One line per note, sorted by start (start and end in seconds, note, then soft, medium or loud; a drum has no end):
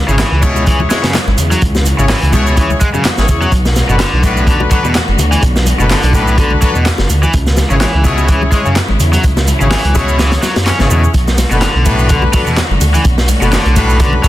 0.00 3.48 C#3 medium
0.00 3.48 E3 medium
0.00 3.48 G#3 medium
0.00 1.60 E4 medium
0.08 0.23 G#1 medium
0.08 0.14 C#3 medium
0.08 0.29 C#4 medium
0.08 0.29 E4 medium
0.08 0.29 G#4 medium
0.08 0.29 C#5 medium
0.08 shaker soft
0.19 0.42 E3 medium
0.19 snare loud
0.19 clap loud
0.19 closed hi-hat loud
0.19 high bongo medium
0.19 shaker soft
0.32 0.85 C#2 loud
0.42 0.65 B2 loud
0.42 0.63 C#4 loud
0.42 0.63 E4 medium
0.42 0.63 G#4 medium
0.42 0.63 C#5 loud
0.42 kick loud
0.42 closed hi-hat medium
0.42 high conga medium
0.42 shaker medium
0.56 high bongo medium
0.56 shaker soft
0.66 0.79 E3 loud
0.66 0.87 C#4 medium
0.66 0.87 E4 medium
0.66 0.87 G#4 medium
0.66 0.87 C#5 medium
0.66 kick loud
0.66 closed hi-hat loud
0.66 shaker soft
0.80 high bongo medium
0.80 high conga loud
0.90 0.97 G#3 medium
0.90 1.05 C#4 loud
0.90 1.05 E4 medium
0.90 1.05 G#4 medium
0.90 1.04 C#5 loud
0.90 snare loud
0.90 closed hi-hat medium
0.90 shaker medium
1.03 1.19 F#2 medium
1.03 1.12 C#3 medium
1.03 snare loud
1.03 closed hi-hat medium
1.03 shaker soft
1.14 snare loud
1.14 clap loud
1.14 closed hi-hat medium
1.14 high bongo medium
1.14 shaker soft
1.27 1.34 G#1 loud
1.27 high conga medium
1.38 1.55 E2 medium
1.38 closed hi-hat medium
1.38 high bongo soft
1.38 low conga medium
1.38 shaker medium
1.51 1.60 F#3 loud
1.51 closed hi-hat soft
1.51 shaker soft
1.62 1.92 C#2 loud
1.62 7.29 F#4 medium
1.62 kick loud
1.62 closed hi-hat medium
1.62 shaker soft
1.75 snare soft
1.75 high bongo medium
1.75 shaker soft
1.86 closed hi-hat medium
1.86 high conga medium
1.86 shaker medium
1.99 2.14 G#1 medium
1.99 2.04 C#3 medium
1.99 2.19 C#4 medium
1.99 2.19 E4 medium
1.99 2.19 G#4 medium
1.99 2.19 C#5 medium
1.99 high bongo soft
1.99 shaker soft
2.09 2.32 E3 medium
2.09 snare loud
2.09 clap loud
2.09 open hi-hat medium
2.09 shaker soft
2.23 2.75 C#2 loud
2.23 closed hi-hat soft
2.33 2.56 B2 loud
2.33 2.54 C#4 loud
2.33 2.54 E4 medium
2.33 2.54 G#4 medium
2.33 2.54 C#5 loud
2.33 kick medium
2.33 closed hi-hat medium
2.33 high bongo medium
2.33 high conga loud
2.33 shaker medium
2.47 shaker soft
2.57 2.70 E3 loud
2.57 2.78 C#4 medium
2.57 2.78 E4 medium
2.57 2.78 G#4 medium
2.57 2.78 C#5 medium
2.57 kick loud
2.57 closed hi-hat loud
2.57 high bongo soft
2.57 shaker soft
2.70 high conga medium
2.70 shaker soft
2.81 2.88 G#3 medium
2.81 kick loud
2.81 closed hi-hat medium
2.81 shaker medium
2.94 3.09 F#2 medium
2.94 3.03 C#3 medium
2.94 high bongo medium
2.94 shaker soft
3.05 snare loud
3.05 clap loud
3.05 closed hi-hat medium
3.05 shaker soft
3.18 3.25 G#1 medium
3.18 3.27 C#4 medium
3.18 3.27 E4 medium
3.18 3.27 G#4 medium
3.18 3.27 C#5 loud
3.18 snare medium
3.18 high bongo medium
3.18 high conga medium
3.18 shaker soft
3.29 3.45 E2 loud
3.29 3.50 C#4 medium
3.29 3.50 E4 medium
3.29 3.50 G#4 medium
3.29 3.50 C#5 medium
3.29 kick loud
3.29 closed hi-hat medium
3.29 low conga medium
3.29 shaker medium
3.41 3.51 F#3 loud
3.41 shaker soft
3.52 3.82 B1 loud
3.52 7.29 D3 medium
3.52 7.29 A3 medium
3.52 7.29 B3 medium
3.52 kick loud
3.52 closed hi-hat medium
3.52 shaker soft
3.65 snare medium
3.65 high bongo medium
3.65 shaker soft
3.76 snare medium
3.76 closed hi-hat medium
3.76 high conga medium
3.76 shaker medium
3.89 4.04 F#1 medium
3.89 3.95 B2 medium
3.89 4.10 D4 medium
3.89 4.10 F#4 medium
3.89 4.10 A4 medium
3.89 4.10 B4 medium
3.89 shaker soft
4.00 4.23 D3 medium
4.00 snare loud
4.00 clap loud
4.00 closed hi-hat loud
4.00 high bongo medium
4.00 shaker soft
4.13 4.66 B1 loud
4.23 4.46 A2 loud
4.23 4.44 D4 loud
4.23 4.44 F#4 medium
4.23 4.44 A4 medium
4.23 4.44 B4 loud
4.23 kick medium
4.23 closed hi-hat medium
4.23 high bongo soft
4.23 high conga medium
4.23 shaker medium
4.37 shaker soft
4.47 4.60 D3 loud
4.47 4.68 D4 medium
4.47 4.68 F#4 medium
4.47 4.68 A4 medium
4.47 4.68 B4 medium
4.47 kick loud
4.47 closed hi-hat medium
4.47 shaker soft
4.60 high bongo medium
4.60 high conga loud
4.71 4.78 F#3 medium
4.71 4.85 D4 loud
4.71 4.85 F#4 medium
4.71 4.85 A4 medium
4.71 4.85 B4 loud
4.71 kick loud
4.71 closed hi-hat medium
4.71 shaker medium
4.84 4.99 E2 medium
4.84 4.94 B2 medium
4.84 high bongo soft
4.84 shaker soft
4.95 snare loud
4.95 clap loud
4.95 closed hi-hat medium
4.95 shaker soft
5.08 5.15 F#1 loud
5.08 high conga medium
5.18 5.36 D2 medium
5.18 closed hi-hat medium
5.18 high bongo medium
5.18 low conga medium
5.18 shaker medium
5.32 5.41 E3 loud
5.32 closed hi-hat soft
5.32 shaker soft
5.41 5.73 B1 loud
5.41 kick loud
5.41 closed hi-hat medium
5.41 high bongo medium
5.41 shaker soft
5.56 snare medium
5.56 shaker soft
5.66 closed hi-hat medium
5.66 high conga medium
5.66 shaker medium
5.79 5.95 F#1 medium
5.79 5.85 B2 medium
5.79 6.00 D4 medium
5.79 6.00 F#4 medium
5.79 6.00 A4 medium
5.79 6.00 B4 medium
5.79 high bongo medium
5.79 shaker soft
5.90 6.13 D3 medium
5.90 snare loud
5.90 clap loud
5.90 open hi-hat medium
5.90 shaker soft
6.03 6.56 B1 medium
6.03 closed hi-hat soft
6.03 high bongo soft
6.13 6.37 A2 loud
6.13 6.35 D4 loud
6.13 6.35 F#4 medium
6.13 6.35 A4 medium
6.13 6.35 B4 loud
6.13 kick medium
6.13 closed hi-hat medium
6.13 high conga medium
6.13 shaker medium
6.28 shaker soft
6.38 6.50 D3 loud
6.38 6.59 D4 medium
6.38 6.59 F#4 medium
6.38 6.59 A4 medium
6.38 6.59 B4 medium
6.38 kick loud
6.38 closed hi-hat medium
6.38 high bongo medium
6.38 shaker soft
6.50 high conga medium
6.61 6.69 F#3 medium
6.61 6.76 D4 loud
6.61 6.76 F#4 medium
6.61 6.76 A4 loud
6.61 6.76 B4 loud
6.61 kick loud
6.61 closed hi-hat medium
6.61 high bongo soft
6.61 shaker medium
6.75 6.90 E2 medium
6.75 6.84 B2 medium
6.75 shaker soft
6.86 snare loud
6.86 clap loud
6.86 closed hi-hat medium
6.86 shaker soft
6.98 7.06 F#1 loud
6.98 snare medium
6.98 high bongo medium
6.98 high conga medium
7.09 7.26 D2 loud
7.09 closed hi-hat medium
7.09 low conga medium
7.09 shaker medium
7.23 7.32 E3 loud
7.23 high bongo medium
7.23 shaker soft
7.33 7.64 C#2 loud
7.33 11.10 C#3 medium
7.33 11.10 E3 medium
7.33 9.22 G#3 medium
7.33 11.10 E4 medium
7.33 kick loud
7.33 closed hi-hat medium
7.33 shaker soft
7.47 snare soft
7.47 shaker soft
7.57 snare medium
7.57 closed hi-hat medium
7.57 high bongo medium
7.57 high conga medium
7.57 shaker medium
7.70 7.85 G#1 medium
7.70 7.76 C#3 medium
7.70 7.91 C#4 medium
7.70 7.91 E4 medium
7.70 7.91 G#4 medium
7.70 7.91 C#5 medium
7.70 shaker soft
7.81 8.04 E3 medium
7.81 snare loud
7.81 clap loud
7.81 closed hi-hat medium
7.81 high bongo medium
7.81 shaker soft
7.94 8.47 C#2 medium
8.04 8.27 B2 loud
8.04 8.25 C#4 loud
8.04 8.25 E4 loud
8.04 8.25 G#4 loud
8.04 8.25 C#5 loud
8.04 kick loud
8.04 closed hi-hat medium
8.04 high conga medium
8.04 shaker medium
8.18 high bongo medium
8.18 shaker soft
8.28 8.41 E3 loud
8.28 8.49 C#4 medium
8.28 8.49 E4 medium
8.28 8.49 G#4 medium
8.28 8.49 C#5 medium
8.28 kick loud
8.28 closed hi-hat medium
8.28 shaker soft
8.42 high bongo soft
8.42 high conga medium
8.52 8.59 G#3 medium
8.52 8.66 C#4 loud
8.52 8.66 E4 medium
8.52 8.66 G#4 loud
8.52 8.66 C#5 loud
8.52 kick medium
8.52 closed hi-hat medium
8.52 shaker medium
8.66 8.81 F#2 medium
8.66 8.75 C#3 medium
8.66 shaker soft
8.76 snare loud
8.76 clap loud
8.76 closed hi-hat medium
8.76 high bongo medium
8.76 shaker soft
8.88 8.97 G#1 loud
8.88 high conga medium
9.00 9.17 E2 loud
9.00 closed hi-hat medium
9.00 high bongo medium
9.00 low conga medium
9.00 shaker medium
9.13 9.22 F#3 loud
9.13 closed hi-hat soft
9.13 shaker soft
9.24 9.54 C#2 loud
9.24 11.12 F#3 medium
9.24 kick loud
9.24 closed hi-hat medium
9.24 shaker soft
9.37 snare medium
9.37 high bongo medium
9.37 shaker soft
9.47 closed hi-hat medium
9.47 high conga medium
9.47 shaker medium
9.61 9.76 G#1 medium
9.61 9.66 C#3 medium
9.61 9.81 C#4 medium
9.61 9.81 E4 medium
9.61 9.81 G#4 medium
9.61 9.81 C#5 medium
9.61 high bongo medium
9.61 shaker soft
9.71 9.94 E3 medium
9.71 snare loud
9.71 clap loud
9.71 open hi-hat medium
9.71 shaker soft
9.85 10.37 C#2 medium
9.85 closed hi-hat soft
9.95 10.18 B2 loud
9.95 10.16 C#4 loud
9.95 10.16 E4 loud
9.95 10.16 G#4 medium
9.95 10.16 C#5 loud
9.95 kick medium
9.95 closed hi-hat medium
9.95 high bongo medium
9.95 high conga medium
9.95 shaker medium
10.09 shaker soft
10.19 10.31 E3 loud
10.19 10.40 C#4 medium
10.19 10.40 E4 medium
10.19 10.40 G#4 medium
10.19 10.40 C#5 medium
10.19 snare loud
10.19 closed hi-hat medium
10.19 high bongo medium
10.19 shaker soft
10.32 snare loud
10.32 closed hi-hat medium
10.32 high conga medium
10.32 shaker soft
10.42 10.54 F#3 medium
10.42 snare loud
10.42 closed hi-hat medium
10.42 shaker medium
10.56 10.71 F#2 medium
10.56 snare loud
10.56 closed hi-hat medium
10.56 high bongo medium
10.56 shaker soft
10.66 10.78 C#4 medium
10.66 snare loud
10.66 clap loud
10.66 closed hi-hat medium
10.66 shaker soft
10.79 10.87 G#1 loud
10.79 10.89 C#3 loud
10.79 10.89 C#4 medium
10.79 10.89 E4 medium
10.79 10.89 G#4 medium
10.79 10.89 C#5 loud
10.79 snare medium
10.79 high bongo medium
10.79 high conga medium
10.79 shaker soft
10.90 11.07 E2 loud
10.90 11.02 B2 medium
10.90 11.11 C#4 medium
10.90 11.11 E4 medium
10.90 11.11 G#4 medium
10.90 11.11 C#5 medium
10.90 low conga medium
10.90 shaker medium
11.04 shaker soft
11.14 11.44 B1 loud
11.14 14.28 D3 medium
11.14 14.28 A3 medium
11.14 13.03 B3 medium
11.14 14.28 F#4 medium
11.14 kick loud
11.14 closed hi-hat medium
11.14 shaker soft
11.27 snare soft
11.27 high bongo medium
11.27 shaker soft
11.38 snare medium
11.38 closed hi-hat medium
11.38 ride medium
11.38 high conga medium
11.38 shaker medium
11.51 11.66 F#1 medium
11.51 11.56 B2 medium
11.51 11.72 D4 medium
11.51 11.72 F#4 medium
11.51 11.72 A4 medium
11.51 11.72 B4 medium
11.51 shaker soft
11.62 11.85 D3 medium
11.62 snare loud
11.62 clap loud
11.62 closed hi-hat medium
11.62 high bongo medium
11.62 shaker soft
11.75 12.28 B1 medium
11.85 12.08 A2 loud
11.85 12.06 D4 loud
11.85 12.06 F#4 medium
11.85 12.06 A4 medium
11.85 12.06 B4 loud
11.85 kick loud
11.85 closed hi-hat medium
11.85 ride medium
11.85 high bongo medium
11.85 high conga medium
11.85 shaker medium
11.99 shaker soft
12.09 12.22 D3 medium
12.09 12.30 D4 medium
12.09 12.30 F#4 medium
12.09 12.30 A4 medium
12.09 12.30 B4 medium
12.09 kick loud
12.09 closed hi-hat medium
12.09 shaker soft
12.22 high bongo medium
12.22 high conga medium
12.33 12.40 F#3 medium
12.33 12.47 D4 loud
12.33 12.47 F#4 medium
12.33 12.47 A4 medium
12.33 12.47 B4 loud
12.33 kick medium
12.33 closed hi-hat medium
12.33 ride medium
12.33 shaker medium
12.46 12.62 E2 medium
12.46 12.55 B2 medium
12.46 high bongo medium
12.46 shaker soft
12.57 snare loud
12.57 clap loud
12.57 closed hi-hat medium
12.57 shaker soft
12.71 12.77 F#1 loud
12.71 high conga medium
12.81 12.98 D2 medium
12.81 closed hi-hat medium
12.81 ride medium
12.81 high bongo medium
12.81 low conga loud
12.81 shaker medium
12.94 13.03 E3 loud
12.94 closed hi-hat soft
12.94 shaker soft
13.05 13.35 B1 loud
13.05 14.28 C#4 medium
13.05 kick loud
13.05 closed hi-hat medium
13.05 high bongo soft
13.05 shaker soft
13.18 snare medium
13.18 shaker soft
13.28 closed hi-hat medium
13.28 ride medium
13.28 high conga medium
13.28 shaker medium
13.42 13.57 F#1 medium
13.42 13.47 B2 medium
13.42 13.62 D4 medium
13.42 13.62 F#4 medium
13.42 13.62 A4 medium
13.42 13.62 B4 medium
13.42 high bongo medium
13.42 shaker soft
13.52 13.75 D3 medium
13.52 snare loud
13.52 clap loud
13.52 open hi-hat medium
13.52 shaker soft
13.66 14.18 B1 loud
13.66 closed hi-hat soft
13.66 high bongo soft
13.76 13.99 A2 loud
13.76 13.97 D4 loud
13.76 13.97 F#4 loud
13.76 13.97 A4 medium
13.76 13.97 B4 loud
13.76 kick medium
13.76 closed hi-hat medium
13.76 ride medium
13.76 high conga medium
13.76 shaker medium
13.90 shaker soft
14.00 14.12 D3 loud
14.00 14.21 D4 medium
14.00 14.21 F#4 medium
14.00 14.21 A4 medium
14.00 14.21 B4 medium
14.00 kick loud
14.00 closed hi-hat medium
14.00 high bongo medium
14.00 shaker soft
14.13 high conga medium
14.24 14.28 F#3 medium
14.24 14.28 D4 loud
14.24 14.28 F#4 medium
14.24 14.28 A4 medium
14.24 14.28 B4 loud
14.24 kick loud
14.24 closed hi-hat medium
14.24 ride medium
14.24 high bongo medium
14.24 shaker medium